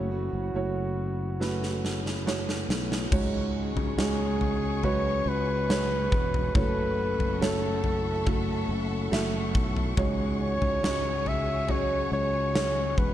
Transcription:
Already playing: F#1 F#2 C#3 E3 A3 C#4 E4 F#4 C#5
0.11 E3 A3 C#4 F#4
0.33 F#1
0.54 F#1 A3 E4 F#4 C#5
1.40 E3 A3 C#4 E4 F#4 B4, snare
1.63 snare
1.85 snare
2.06 snare
2.25 E3 A3 C#4 E4 F#4 C#5, snare
2.49 snare
2.69 B1, snare
2.92 snare
3.11 C#2 G#2 C#3 F#3 G#3 C#4 F#4 G#4 C#5 F#5 C#6, kick, floor tom, crash
3.76 C#2, floor tom
3.98 C#2 G#3 C#4 F#4 G#4 C#5, snare
4.41 floor tom
4.83 C#3 F#3 G#3 C#4 F#4 G#4 B4 C#5, floor tom
5.26 C#2 B4
5.69 F#3 G#3 C#4 F#4 G#4 C#5, snare
6.12 E1, kick
6.34 floor tom
6.54 F#1 F#2 C#3 E3 A3 C#4 E4 F#4 A4 B4 C#5 E5 C#6, kick, floor tom
7.19 F#1, floor tom
7.41 A3 E4 F#4 A4 C#5, snare
7.82 E3 A3 C#4 A4, floor tom
8.25 F#2 C#3 E3 A3 C#4 E4 F#4 A4, kick, floor tom
8.69 F#1
9.11 F#1 A3 E4 F#4 E5, snare
9.55 B1, kick
9.76 floor tom
9.97 C#2 G#2 C#3 F#3 G#3 C#4 F#4 G#4 C#5, kick, floor tom
10.42 C#5
10.62 C#2, floor tom
10.83 C#2 G#3 C#4 F#4 C#5, snare
11.26 C#4 F#4 G#4 E5, floor tom
11.68 C#3 F#3 G#3 C#4 F#4 G#4 C#5, floor tom
12.12 C#2 C#5
12.54 F#3 G#3 C#4 F#4 G#4 C#5, snare
12.98 E1 B4, kick

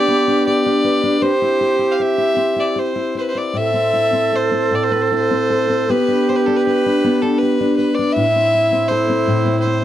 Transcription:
Already playing: D4 G4 B4 D5
0.08 B3
0.28 D4
0.47 G4 D5
0.66 D4
0.84 B4
1.03 D4
1.21 C4 G4 C5
1.42 E4
1.61 G4
1.79 E4
1.92 F5
2.00 C5 E5
2.18 E4
2.36 C4
2.56 E4
2.60 D5
2.76 G4 C5
2.96 E4
3.15 C5
3.20 B4
3.29 C5
3.35 E4 D5
3.53 A2 A4
3.58 E5
3.74 C4
3.93 E4
4.13 C4
4.32 A4 C5
4.51 C4
4.71 A2
4.75 D5
4.84 C5
4.92 C4 B4
5.02 C5
5.12 E4 C5
5.31 C4
5.50 A4
5.69 C4
5.90 B3 G4 B4
6.08 D4
6.29 G4 C5
6.36 B4
6.46 D4 A4
6.57 B4
6.67 B4
6.86 D4
7.04 B3
7.22 D4 A4
7.38 B4
7.43 G4
7.61 D4
7.76 B4
7.95 D4 D5
8.13 A2 E4 E5
8.36 C4
8.55 E4
8.72 C4
8.88 A4 C5
9.09 C4
9.27 A2
9.46 C4
9.60 C5
9.65 E4

